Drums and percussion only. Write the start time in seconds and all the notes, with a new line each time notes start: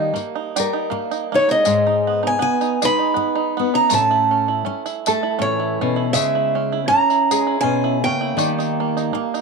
0.16 tambourine
0.56 tambourine
1.11 tambourine
1.49 tambourine
1.65 tambourine
2.61 tambourine
2.82 tambourine
3.90 tambourine
4.86 tambourine
5.06 tambourine
6.14 tambourine
7.10 tambourine
7.31 tambourine
8.39 tambourine
8.60 tambourine
8.97 tambourine
9.35 tambourine